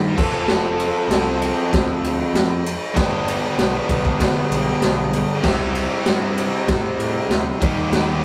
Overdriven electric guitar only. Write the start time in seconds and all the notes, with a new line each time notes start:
Already playing: D#3 G3 A#3 D#4 G4
0.17 F3 C4 F4 A4
2.94 G2 D3 G3 B3 D4 G4
5.42 C3 G3 C4 E4 G4
7.60 D#3 G3 A#3 D#4 G4